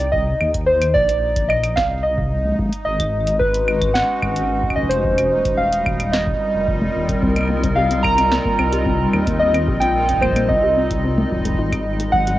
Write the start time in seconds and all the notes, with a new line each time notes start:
Already playing: C2 D#4 D5
0.00 closed hi-hat
0.12 D#5, kick
0.41 D#2, claves
0.54 kick, closed hi-hat
0.66 C5
0.82 closed hi-hat, claves
0.94 A#1 D5, kick
1.09 closed hi-hat
1.36 kick, closed hi-hat
1.49 D#5, claves
1.63 closed hi-hat, claves
1.76 C2 F5, kick, snare
2.03 D#5
2.18 kick
2.45 low conga
2.49 low conga
2.52 low conga
2.56 kick, low conga
2.59 G#3, low conga
2.62 low conga
2.66 low conga
2.69 closed hi-hat, low conga
2.85 G#1 D#5
2.94 F#4
3.00 kick, closed hi-hat, claves
3.18 C#4 B4
3.27 closed hi-hat
3.39 B4, kick
3.54 closed hi-hat
3.68 D#5, claves
3.82 kick, closed hi-hat, claves
3.94 F#5, snare
4.22 G#1, kick, claves
4.36 closed hi-hat
4.63 kick
4.70 kick, claves
4.76 F1 D#5, kick
4.84 kick
4.89 C5, closed hi-hat
5.04 G3, kick
5.18 closed hi-hat, claves
5.32 D#1
5.45 C4, kick, closed hi-hat
5.57 F5
5.73 F4, closed hi-hat
5.86 kick, claves
6.00 A#4, closed hi-hat, claves
6.12 D#5, snare
6.27 kick
6.54 F1
6.68 kick
6.82 low conga
6.95 D#1
7.09 kick, closed hi-hat
7.23 C2 C4, kick
7.36 A#3, closed hi-hat, claves
7.38 claves
7.41 claves
7.43 claves
7.45 claves
7.48 A#3, claves
7.63 C4, kick, closed hi-hat
7.76 G4 F5
7.91 C4, closed hi-hat
8.03 A#5, kick, claves
8.18 C4, closed hi-hat, claves
8.32 A#3, snare
8.45 A#3, kick
8.59 C2 C4, claves
8.73 G4, closed hi-hat
8.86 C4, kick
9.13 D#2 C4, claves
9.27 A#3, kick, closed hi-hat
9.39 A#3 D#5
9.54 C4, closed hi-hat, claves
9.68 A#1 G4, kick
9.80 C4 G5, closed hi-hat
10.09 C4, kick, closed hi-hat
10.13 kick
10.18 C5, kick
10.23 A#3, kick, claves
10.27 kick
10.32 kick
10.36 A#3, closed hi-hat, claves
10.48 C2 C4 D#5, kick
10.63 G4
10.77 C4
10.91 kick, closed hi-hat
11.04 C4
11.18 A#3, low conga
11.32 F#3 G#3, kick
11.36 kick
11.41 kick
11.45 G#3, kick, closed hi-hat
11.50 kick
11.54 kick
11.59 G#1 D#4
11.72 G#3, kick, closed hi-hat, claves
11.78 C#4
12.00 G#3, closed hi-hat
12.12 F#3 F#5, kick
12.27 F#3, closed hi-hat